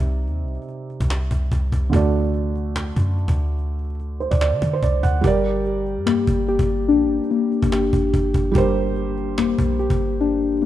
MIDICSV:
0, 0, Header, 1, 5, 480
1, 0, Start_track
1, 0, Key_signature, -2, "minor"
1, 0, Tempo, 413793
1, 319, Time_signature, 4, 2, 24, 8
1, 12360, End_track
2, 0, Start_track
2, 0, Title_t, "Felt piano"
2, 0, Program_c, 0, 0
2, 0, Control_c, 0, 64, 127
2, 0, Note_on_c, 0, 48, 76
2, 0, Note_on_c, 0, 60, 72
2, 0, Note_on_c, 0, 63, 72
2, 0, Note_on_c, 0, 74, 86
2, 2175, Note_off_c, 0, 48, 0
2, 2187, Note_off_c, 0, 60, 0
2, 2199, Note_off_c, 0, 63, 0
2, 2199, Note_on_c, 0, 50, 83
2, 2211, Note_off_c, 0, 74, 0
2, 2222, Note_on_c, 0, 57, 78
2, 2246, Note_on_c, 0, 66, 72
2, 2253, Control_c, 0, 64, 0
2, 2270, Note_on_c, 0, 74, 86
2, 2474, Control_c, 0, 64, 127
2, 4876, Note_on_c, 0, 72, 73
2, 4980, Note_off_c, 0, 74, 0
2, 4996, Note_off_c, 0, 72, 0
2, 4997, Note_on_c, 0, 74, 74
2, 5102, Note_off_c, 0, 74, 0
2, 5120, Note_on_c, 0, 74, 75
2, 5461, Note_off_c, 0, 74, 0
2, 5491, Note_on_c, 0, 72, 75
2, 5593, Note_off_c, 0, 72, 0
2, 5604, Note_on_c, 0, 74, 72
2, 5825, Note_off_c, 0, 74, 0
2, 5836, Note_on_c, 0, 78, 78
2, 6012, Note_off_c, 0, 50, 0
2, 6024, Note_off_c, 0, 57, 0
2, 6036, Note_off_c, 0, 66, 0
2, 6046, Note_on_c, 0, 55, 74
2, 6060, Note_off_c, 0, 78, 0
2, 6070, Note_on_c, 0, 67, 73
2, 6093, Note_on_c, 0, 70, 74
2, 6096, Control_c, 0, 64, 0
2, 6117, Note_on_c, 0, 74, 89
2, 6287, Control_c, 0, 64, 127
2, 9856, Note_off_c, 0, 55, 0
2, 9868, Note_off_c, 0, 67, 0
2, 9878, Note_on_c, 0, 55, 78
2, 9879, Note_off_c, 0, 70, 0
2, 9892, Note_off_c, 0, 74, 0
2, 9902, Note_on_c, 0, 67, 74
2, 9926, Note_on_c, 0, 70, 70
2, 9950, Note_on_c, 0, 72, 88
2, 12360, Note_off_c, 0, 55, 0
2, 12360, Note_off_c, 0, 67, 0
2, 12360, Note_off_c, 0, 70, 0
2, 12360, Note_off_c, 0, 72, 0
2, 12360, End_track
3, 0, Start_track
3, 0, Title_t, "Synth keys"
3, 0, Program_c, 1, 88
3, 6080, Note_on_c, 1, 67, 102
3, 7032, Note_on_c, 1, 58, 92
3, 7508, Note_off_c, 1, 67, 0
3, 7522, Note_on_c, 1, 67, 100
3, 7986, Note_on_c, 1, 62, 106
3, 8465, Note_off_c, 1, 58, 0
3, 8479, Note_on_c, 1, 58, 88
3, 8944, Note_off_c, 1, 67, 0
3, 8958, Note_on_c, 1, 67, 102
3, 9913, Note_off_c, 1, 67, 0
3, 9927, Note_on_c, 1, 67, 97
3, 10870, Note_off_c, 1, 58, 0
3, 10872, Note_off_c, 1, 62, 0
3, 10884, Note_on_c, 1, 58, 87
3, 11347, Note_off_c, 1, 67, 0
3, 11361, Note_on_c, 1, 67, 93
3, 11840, Note_on_c, 1, 62, 105
3, 12308, Note_off_c, 1, 58, 0
3, 12322, Note_on_c, 1, 58, 89
3, 12360, Note_off_c, 1, 58, 0
3, 12360, Note_off_c, 1, 62, 0
3, 12360, Note_off_c, 1, 67, 0
3, 12360, End_track
4, 0, Start_track
4, 0, Title_t, "808-style bass"
4, 0, Program_c, 2, 38
4, 0, Note_on_c, 2, 36, 110
4, 318, Note_on_c, 2, 39, 102
4, 336, Note_off_c, 2, 36, 0
4, 502, Note_on_c, 2, 36, 101
4, 519, Note_off_c, 2, 39, 0
4, 676, Note_off_c, 2, 36, 0
4, 1166, Note_on_c, 2, 36, 105
4, 1505, Note_off_c, 2, 36, 0
4, 1519, Note_on_c, 2, 36, 99
4, 1749, Note_off_c, 2, 36, 0
4, 1759, Note_on_c, 2, 36, 110
4, 1989, Note_off_c, 2, 36, 0
4, 1999, Note_on_c, 2, 36, 108
4, 2229, Note_off_c, 2, 36, 0
4, 2239, Note_on_c, 2, 38, 113
4, 3393, Note_off_c, 2, 38, 0
4, 3439, Note_on_c, 2, 42, 103
4, 3791, Note_off_c, 2, 42, 0
4, 3806, Note_on_c, 2, 38, 102
4, 4960, Note_off_c, 2, 38, 0
4, 5006, Note_on_c, 2, 38, 110
4, 5246, Note_on_c, 2, 50, 101
4, 5264, Note_off_c, 2, 38, 0
4, 5353, Note_off_c, 2, 50, 0
4, 5359, Note_on_c, 2, 50, 100
4, 5589, Note_off_c, 2, 50, 0
4, 5598, Note_on_c, 2, 36, 110
4, 5829, Note_off_c, 2, 36, 0
4, 5838, Note_on_c, 2, 38, 107
4, 6069, Note_off_c, 2, 38, 0
4, 6079, Note_on_c, 2, 31, 110
4, 6926, Note_on_c, 2, 43, 100
4, 6943, Note_off_c, 2, 31, 0
4, 7261, Note_off_c, 2, 43, 0
4, 7278, Note_on_c, 2, 31, 103
4, 7519, Note_on_c, 2, 30, 105
4, 7536, Note_off_c, 2, 31, 0
4, 7639, Note_off_c, 2, 30, 0
4, 7645, Note_on_c, 2, 31, 107
4, 7999, Note_on_c, 2, 34, 99
4, 8016, Note_off_c, 2, 31, 0
4, 8182, Note_on_c, 2, 31, 103
4, 8199, Note_off_c, 2, 34, 0
4, 8356, Note_off_c, 2, 31, 0
4, 8845, Note_on_c, 2, 31, 99
4, 9184, Note_off_c, 2, 31, 0
4, 9198, Note_on_c, 2, 31, 102
4, 9429, Note_off_c, 2, 31, 0
4, 9438, Note_on_c, 2, 31, 106
4, 9668, Note_off_c, 2, 31, 0
4, 9678, Note_on_c, 2, 31, 107
4, 9909, Note_off_c, 2, 31, 0
4, 9919, Note_on_c, 2, 31, 113
4, 11072, Note_off_c, 2, 31, 0
4, 11119, Note_on_c, 2, 34, 101
4, 11471, Note_off_c, 2, 34, 0
4, 11487, Note_on_c, 2, 31, 103
4, 12360, Note_off_c, 2, 31, 0
4, 12360, End_track
5, 0, Start_track
5, 0, Title_t, "Cajon"
5, 80, Note_on_c, 9, 38, 48
5, 196, Note_off_c, 9, 38, 0
5, 319, Note_on_c, 9, 38, 49
5, 435, Note_off_c, 9, 38, 0
5, 559, Note_on_c, 9, 38, 19
5, 639, Note_off_c, 9, 38, 0
5, 639, Note_on_c, 9, 38, 25
5, 719, Note_off_c, 9, 38, 0
5, 719, Note_on_c, 9, 38, 33
5, 795, Note_off_c, 9, 38, 0
5, 795, Note_on_c, 9, 38, 43
5, 911, Note_off_c, 9, 38, 0
5, 1043, Note_on_c, 9, 38, 41
5, 1159, Note_off_c, 9, 38, 0
5, 1166, Note_on_c, 9, 36, 95
5, 1279, Note_on_c, 9, 38, 110
5, 1282, Note_off_c, 9, 36, 0
5, 1291, Note_off_c, 9, 38, 0
5, 1291, Note_on_c, 9, 38, 89
5, 1407, Note_off_c, 9, 38, 0
5, 1519, Note_on_c, 9, 36, 90
5, 1599, Note_on_c, 9, 38, 34
5, 1635, Note_off_c, 9, 36, 0
5, 1679, Note_off_c, 9, 38, 0
5, 1679, Note_on_c, 9, 38, 25
5, 1758, Note_on_c, 9, 36, 97
5, 1795, Note_off_c, 9, 38, 0
5, 1874, Note_off_c, 9, 36, 0
5, 1999, Note_on_c, 9, 36, 90
5, 2115, Note_off_c, 9, 36, 0
5, 2239, Note_on_c, 9, 36, 120
5, 2355, Note_off_c, 9, 36, 0
5, 2480, Note_on_c, 9, 38, 26
5, 2544, Note_off_c, 9, 38, 0
5, 2544, Note_on_c, 9, 38, 27
5, 2607, Note_off_c, 9, 38, 0
5, 2607, Note_on_c, 9, 38, 26
5, 2663, Note_off_c, 9, 38, 0
5, 2663, Note_on_c, 9, 38, 27
5, 2715, Note_off_c, 9, 38, 0
5, 2715, Note_on_c, 9, 38, 43
5, 2831, Note_off_c, 9, 38, 0
5, 2964, Note_on_c, 9, 38, 43
5, 3080, Note_off_c, 9, 38, 0
5, 3199, Note_on_c, 9, 38, 111
5, 3210, Note_off_c, 9, 38, 0
5, 3210, Note_on_c, 9, 38, 89
5, 3326, Note_off_c, 9, 38, 0
5, 3439, Note_on_c, 9, 36, 88
5, 3555, Note_off_c, 9, 36, 0
5, 3681, Note_on_c, 9, 38, 43
5, 3797, Note_off_c, 9, 38, 0
5, 3806, Note_on_c, 9, 36, 98
5, 3921, Note_on_c, 9, 38, 46
5, 3922, Note_off_c, 9, 36, 0
5, 4037, Note_off_c, 9, 38, 0
5, 4160, Note_on_c, 9, 38, 49
5, 4276, Note_off_c, 9, 38, 0
5, 4399, Note_on_c, 9, 38, 26
5, 4463, Note_off_c, 9, 38, 0
5, 4463, Note_on_c, 9, 38, 26
5, 4526, Note_off_c, 9, 38, 0
5, 4526, Note_on_c, 9, 38, 26
5, 4582, Note_off_c, 9, 38, 0
5, 4582, Note_on_c, 9, 38, 26
5, 4635, Note_off_c, 9, 38, 0
5, 4635, Note_on_c, 9, 38, 43
5, 4751, Note_off_c, 9, 38, 0
5, 4879, Note_on_c, 9, 38, 43
5, 4995, Note_off_c, 9, 38, 0
5, 5005, Note_on_c, 9, 36, 99
5, 5118, Note_on_c, 9, 38, 111
5, 5121, Note_off_c, 9, 36, 0
5, 5130, Note_off_c, 9, 38, 0
5, 5130, Note_on_c, 9, 38, 86
5, 5246, Note_off_c, 9, 38, 0
5, 5358, Note_on_c, 9, 36, 87
5, 5474, Note_off_c, 9, 36, 0
5, 5598, Note_on_c, 9, 36, 93
5, 5714, Note_off_c, 9, 36, 0
5, 5839, Note_on_c, 9, 36, 88
5, 5919, Note_on_c, 9, 38, 38
5, 5955, Note_off_c, 9, 36, 0
5, 5999, Note_off_c, 9, 38, 0
5, 5999, Note_on_c, 9, 38, 38
5, 6079, Note_on_c, 9, 36, 119
5, 6115, Note_off_c, 9, 38, 0
5, 6159, Note_on_c, 9, 38, 37
5, 6195, Note_off_c, 9, 36, 0
5, 6238, Note_off_c, 9, 38, 0
5, 6238, Note_on_c, 9, 38, 37
5, 6319, Note_off_c, 9, 38, 0
5, 6319, Note_on_c, 9, 38, 26
5, 6382, Note_off_c, 9, 38, 0
5, 6382, Note_on_c, 9, 38, 26
5, 6446, Note_off_c, 9, 38, 0
5, 6446, Note_on_c, 9, 38, 27
5, 6502, Note_off_c, 9, 38, 0
5, 6502, Note_on_c, 9, 38, 27
5, 6554, Note_off_c, 9, 38, 0
5, 6554, Note_on_c, 9, 38, 45
5, 6670, Note_off_c, 9, 38, 0
5, 6803, Note_on_c, 9, 38, 43
5, 6919, Note_off_c, 9, 38, 0
5, 7038, Note_on_c, 9, 38, 106
5, 7050, Note_off_c, 9, 38, 0
5, 7050, Note_on_c, 9, 38, 88
5, 7166, Note_off_c, 9, 38, 0
5, 7278, Note_on_c, 9, 36, 92
5, 7394, Note_off_c, 9, 36, 0
5, 7520, Note_on_c, 9, 38, 43
5, 7636, Note_off_c, 9, 38, 0
5, 7646, Note_on_c, 9, 36, 98
5, 7761, Note_on_c, 9, 38, 46
5, 7762, Note_off_c, 9, 36, 0
5, 7877, Note_off_c, 9, 38, 0
5, 7999, Note_on_c, 9, 38, 49
5, 8115, Note_off_c, 9, 38, 0
5, 8238, Note_on_c, 9, 38, 18
5, 8318, Note_off_c, 9, 38, 0
5, 8318, Note_on_c, 9, 38, 26
5, 8399, Note_off_c, 9, 38, 0
5, 8399, Note_on_c, 9, 38, 33
5, 8474, Note_off_c, 9, 38, 0
5, 8474, Note_on_c, 9, 38, 43
5, 8590, Note_off_c, 9, 38, 0
5, 8723, Note_on_c, 9, 38, 44
5, 8839, Note_off_c, 9, 38, 0
5, 8845, Note_on_c, 9, 36, 96
5, 8958, Note_on_c, 9, 38, 105
5, 8961, Note_off_c, 9, 36, 0
5, 8970, Note_off_c, 9, 38, 0
5, 8970, Note_on_c, 9, 38, 85
5, 9086, Note_off_c, 9, 38, 0
5, 9198, Note_on_c, 9, 36, 89
5, 9278, Note_on_c, 9, 38, 35
5, 9314, Note_off_c, 9, 36, 0
5, 9359, Note_off_c, 9, 38, 0
5, 9359, Note_on_c, 9, 38, 25
5, 9438, Note_on_c, 9, 36, 93
5, 9475, Note_off_c, 9, 38, 0
5, 9554, Note_off_c, 9, 36, 0
5, 9678, Note_on_c, 9, 36, 92
5, 9794, Note_off_c, 9, 36, 0
5, 9919, Note_on_c, 9, 36, 117
5, 10035, Note_off_c, 9, 36, 0
5, 10159, Note_on_c, 9, 38, 25
5, 10223, Note_off_c, 9, 38, 0
5, 10223, Note_on_c, 9, 38, 27
5, 10286, Note_off_c, 9, 38, 0
5, 10286, Note_on_c, 9, 38, 27
5, 10342, Note_off_c, 9, 38, 0
5, 10342, Note_on_c, 9, 38, 27
5, 10395, Note_off_c, 9, 38, 0
5, 10395, Note_on_c, 9, 38, 44
5, 10511, Note_off_c, 9, 38, 0
5, 10644, Note_on_c, 9, 38, 43
5, 10760, Note_off_c, 9, 38, 0
5, 10879, Note_on_c, 9, 38, 109
5, 10891, Note_off_c, 9, 38, 0
5, 10891, Note_on_c, 9, 38, 89
5, 11007, Note_off_c, 9, 38, 0
5, 11119, Note_on_c, 9, 36, 93
5, 11235, Note_off_c, 9, 36, 0
5, 11362, Note_on_c, 9, 38, 45
5, 11478, Note_off_c, 9, 38, 0
5, 11486, Note_on_c, 9, 36, 97
5, 11601, Note_on_c, 9, 38, 46
5, 11602, Note_off_c, 9, 36, 0
5, 11717, Note_off_c, 9, 38, 0
5, 11840, Note_on_c, 9, 38, 48
5, 11956, Note_off_c, 9, 38, 0
5, 12080, Note_on_c, 9, 38, 26
5, 12143, Note_off_c, 9, 38, 0
5, 12143, Note_on_c, 9, 38, 27
5, 12206, Note_off_c, 9, 38, 0
5, 12206, Note_on_c, 9, 38, 27
5, 12263, Note_off_c, 9, 38, 0
5, 12263, Note_on_c, 9, 38, 27
5, 12315, Note_off_c, 9, 38, 0
5, 12315, Note_on_c, 9, 38, 42
5, 12360, Note_off_c, 9, 38, 0
5, 12360, End_track
0, 0, End_of_file